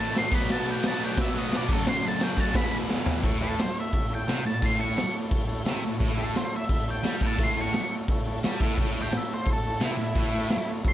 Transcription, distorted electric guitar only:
0.00 0.12 A2 medium
0.00 0.15 E3 medium
0.00 0.17 A3 medium
0.14 0.30 A2 medium
0.14 0.31 E3 medium
0.19 0.30 A3 medium
0.30 0.49 F#3 medium
0.30 0.51 B3 loud
0.34 0.46 B2 medium
0.48 0.81 B2 medium
0.48 0.68 F#3 loud
0.52 0.64 B3 loud
0.65 0.84 F#3 medium
0.65 0.85 B3 medium
0.83 1.16 B2 medium
0.83 1.02 F#3 medium
0.83 0.98 B3 medium
1.00 1.20 B3 medium
1.04 1.18 F#3 medium
1.17 1.50 B2 medium
1.17 1.38 F#3 loud
1.17 1.33 B3 loud
1.35 1.54 B3 medium
1.39 1.52 F#3 medium
1.51 1.68 B2 medium
1.51 1.67 F#3 medium
1.56 1.70 B3 medium
1.69 1.85 F#2 medium
1.69 1.87 C#3 medium
1.69 1.88 F#3 loud
1.86 2.19 F#2 loud
1.86 2.05 C#3 loud
1.86 2.01 F#3 loud
2.03 2.22 C#3 medium
2.03 2.23 F#3 medium
2.21 2.54 F#2 medium
2.21 2.41 C#3 medium
2.25 2.37 F#3 loud
2.38 2.56 C#3 medium
2.38 2.54 F#3 medium
2.55 2.89 E2 loud
2.55 2.75 B2 medium
2.55 2.71 E3 loud
2.72 2.93 E3 medium
2.76 2.91 B2 medium
2.90 3.24 E2 medium
2.90 3.24 B2 medium
2.90 3.26 E3 medium
3.25 3.59 A2 loud
4.29 4.45 C3 loud
4.46 4.60 A2 medium
4.62 4.97 A2 loud
5.67 5.84 C3 loud
5.86 5.99 A2 medium
6.01 6.35 A2 loud
7.04 7.21 G3 loud
7.22 7.38 A2 loud
7.40 7.73 A2 loud
8.45 8.61 G3 loud
8.61 8.78 A2 loud
8.79 9.12 A2 loud
9.81 9.98 C3 loud
9.98 10.12 A2 medium
10.16 10.50 A2 loud

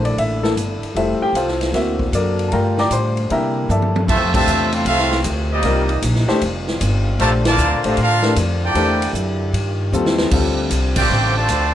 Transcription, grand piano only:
0.00 0.41 A3 soft
0.00 0.42 A#3 soft
0.00 0.42 D4 soft
0.00 0.42 E4 medium
0.05 0.18 D5 medium
0.19 0.44 E5 medium
0.42 0.55 A3 soft
0.42 0.55 A#3 soft
0.42 0.56 D4 soft
0.42 0.55 E4 soft
0.42 0.51 A4 medium
0.95 1.25 G3 soft
0.95 1.26 A3 soft
0.95 1.26 E4 medium
0.95 1.22 A4 medium
0.95 1.22 C5 medium
0.95 1.22 E5 medium
1.22 1.35 G4 medium
1.22 1.35 G5 medium
1.36 1.72 F4 medium
1.36 1.72 A4 medium
1.36 1.72 C5 medium
1.36 1.72 F5 medium
1.74 2.04 A#3 soft
1.74 2.04 C4 soft
1.74 2.11 E4 soft
1.74 2.04 F#4 medium
1.74 2.11 E5 medium
2.15 2.75 D4 medium
2.15 2.75 A4 medium
2.15 2.51 A#4 medium
2.15 2.75 D5 medium
2.48 3.26 G3 soft
2.48 3.26 A3 medium
2.48 2.52 A5 medium
2.53 3.26 F4 medium
2.53 2.78 A#4 medium
2.53 2.78 F5 medium
2.53 2.78 G5 medium
2.53 2.78 A#5 medium
2.79 2.92 D5 medium
2.79 2.92 G5 medium
2.79 2.92 A#5 medium
2.79 2.91 D6 loud
2.92 3.28 C5 medium
2.92 3.28 C6 medium
3.30 4.04 G3 soft
3.30 4.04 A#3 soft
3.30 4.05 D4 soft
3.30 4.05 E4 medium
3.30 3.67 A#4 medium
3.30 3.67 E5 medium
3.30 3.67 G5 medium
3.30 3.67 A#5 medium
3.70 4.00 A4 medium
3.70 4.00 D5 medium
3.70 4.00 E5 medium
3.70 4.00 A5 medium
4.34 4.84 C3 medium
4.34 4.84 A3 medium
4.34 4.84 D4 medium
4.34 4.84 G4 medium
5.65 5.87 G3 medium
5.65 5.87 C4 medium
5.65 5.88 F4 medium
5.65 5.88 A#4 medium
6.28 6.40 A3 medium
6.28 6.40 D4 medium
6.28 6.40 G4 medium
6.28 6.41 C5 loud
7.20 7.43 A3 medium
7.20 7.43 D4 medium
7.20 7.43 G4 medium
7.20 7.43 C5 medium
7.85 7.96 A3 medium
7.85 7.97 D4 medium
7.85 7.97 G4 medium
7.85 7.97 C5 medium
8.23 8.35 A3 medium
8.23 8.35 D4 medium
8.23 8.35 G4 medium
8.23 8.35 A#4 medium
8.75 8.99 A3 medium
8.75 8.99 D4 medium
8.75 8.99 G4 medium
8.75 8.99 C5 medium
9.93 10.31 G3 medium
9.93 10.32 C4 medium
9.93 10.32 F4 medium
9.93 10.32 A4 medium
10.33 11.41 G3 medium
10.33 11.42 C4 medium
10.33 11.41 F4 medium
10.33 11.42 A4 medium

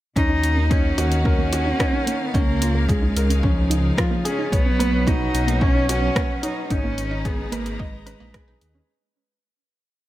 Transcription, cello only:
0.16 0.72 D#4 loud
0.71 1.24 C#4 medium
1.25 2.28 C#4 loud
2.27 2.36 B3 medium
2.34 2.90 A#3 loud
2.89 3.45 G#3 medium
3.43 4.27 F3 medium
4.26 4.52 C#4 medium
4.53 5.09 B3 loud
5.07 5.64 D#4 loud
5.62 5.89 C#4 loud
5.89 6.40 C#4 loud
6.44 6.64 D#4 medium
6.64 6.73 D#4 medium
6.71 7.27 C#4 loud
7.26 7.54 B3 loud
7.53 7.81 A#3 medium
7.80 8.62 G#3 medium

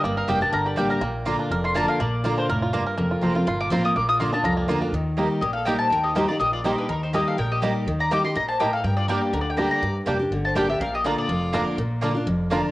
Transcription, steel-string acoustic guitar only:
0.05 0.51 G2 medium
0.28 0.41 G3 medium
0.28 0.41 A#3 medium
0.28 0.41 D4 medium
0.28 0.40 G4 medium
0.41 0.53 D4 soft
0.41 0.52 G4 medium
0.52 0.99 D3 medium
0.78 1.01 G3 medium
0.78 1.01 A#3 medium
0.78 1.01 D4 medium
0.78 1.01 G4 medium
1.01 1.48 A#2 medium
1.26 1.49 D3 medium
1.26 1.50 A#3 medium
1.26 1.50 D4 medium
1.26 1.50 F4 loud
1.51 1.98 F2 medium
1.75 1.98 D3 medium
1.75 1.99 A#3 medium
1.75 1.99 D4 medium
1.75 1.99 F4 loud
2.00 2.46 A#2 medium
2.24 2.47 D3 medium
2.24 2.48 A#3 medium
2.24 2.48 D4 medium
2.24 2.48 F4 medium
2.49 2.72 A2 medium
2.74 2.97 G2 medium
2.98 3.44 F2 medium
3.21 3.34 F3 medium
3.21 3.35 A#3 medium
3.21 3.35 C4 medium
3.21 3.34 F4 medium
3.35 3.47 C4 soft
3.35 3.46 F4 medium
3.47 3.93 A#2 loud
3.70 3.94 F3 loud
3.70 3.94 A#3 medium
3.70 3.95 C4 loud
3.70 3.95 F4 loud
3.96 4.42 A#2 medium
4.20 4.32 D3 medium
4.20 4.33 A#3 medium
4.20 4.33 D4 medium
4.20 4.32 F4 medium
4.33 4.45 D4 soft
4.33 4.44 F4 medium
4.45 4.91 F2 medium
4.69 4.82 D3 medium
4.69 4.82 A#3 medium
4.69 4.82 D4 medium
4.69 4.81 F4 loud
4.82 4.94 D4 soft
4.82 4.93 F4 medium
4.94 5.40 D#3 medium
5.18 5.41 G3 medium
5.18 5.41 A#3 medium
5.18 5.42 D#4 medium
5.18 5.42 G4 loud
5.42 5.89 A#2 medium
5.66 5.90 G3 loud
5.66 5.90 A#3 medium
5.66 5.91 D#4 medium
5.66 5.91 G4 loud
5.92 6.39 D#3 medium
6.16 6.28 G3 medium
6.16 6.29 A#3 medium
6.16 6.29 D#4 medium
6.16 6.28 G4 medium
6.29 6.41 D#4 medium
6.29 6.40 G4 medium
6.41 6.87 A#2 medium
6.64 6.88 G3 medium
6.64 6.88 A#3 medium
6.64 6.89 D#4 medium
6.64 6.89 G4 loud
6.89 7.36 D#3 medium
7.14 7.37 G3 medium
7.14 7.37 A#3 medium
7.14 7.38 D#4 medium
7.14 7.38 G4 medium
7.38 7.85 A#2 medium
7.62 7.86 G3 medium
7.62 7.86 A#3 loud
7.62 7.87 D#4 medium
7.62 7.87 G4 loud
7.88 8.34 D#3 loud
8.11 8.24 G3 medium
8.11 8.24 A#3 medium
8.11 8.25 D#4 medium
8.11 8.23 G4 medium
8.24 8.36 D#4 soft
8.24 8.35 G4 medium
8.35 8.59 A#2 medium
8.60 8.84 A2 medium
8.84 9.31 G2 medium
9.08 9.32 G3 medium
9.08 9.33 A#3 medium
9.08 9.33 D4 medium
9.08 9.33 G4 medium
9.34 9.80 D3 medium
9.57 9.81 G3 medium
9.57 9.81 A#3 medium
9.57 9.82 D4 medium
9.57 9.82 G4 loud
9.83 10.29 G2 medium
10.06 10.19 G3 medium
10.06 10.20 A#3 medium
10.06 10.20 D4 medium
10.06 10.18 G4 medium
10.19 10.32 D4 medium
10.19 10.31 G4 medium
10.32 10.78 D3 medium
10.56 10.68 G3 medium
10.56 10.69 A#3 medium
10.56 10.69 D4 loud
10.56 10.68 G4 loud
10.69 10.81 D4 soft
10.69 10.80 G4 medium
10.81 11.27 A#2 loud
11.04 11.28 D3 medium
11.04 11.28 A#3 medium
11.04 11.29 D4 medium
11.04 11.29 F4 loud
11.29 11.76 F2 loud
11.53 11.77 D3 medium
11.53 11.77 A#3 medium
11.53 11.78 D4 loud
11.53 11.78 F4 loud
11.78 12.25 A#2 medium
12.03 12.15 D3 medium
12.03 12.16 A#3 medium
12.03 12.15 D4 medium
12.03 12.13 F4 medium
12.14 12.27 D4 medium
12.14 12.26 F4 medium
12.27 12.71 F2 loud
12.51 12.71 D3 medium
12.51 12.71 A#3 medium
12.51 12.71 D4 loud
12.51 12.71 F4 loud

